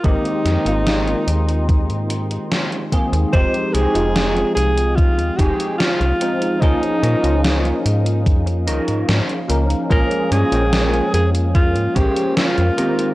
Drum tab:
HH |xxxxxxxxxxxxxxxx|xxxxxxxxxxxxxxxx|xxxxxxxxxxxxxxxx|xxxxxxxxxxxxxxxx|
SD |--o-o-------o---|----o-------o---|----o-------o---|----o-------o---|
BD |o-------o-----o-|o-------o-o-----|o-------o-------|o-------o-o-----|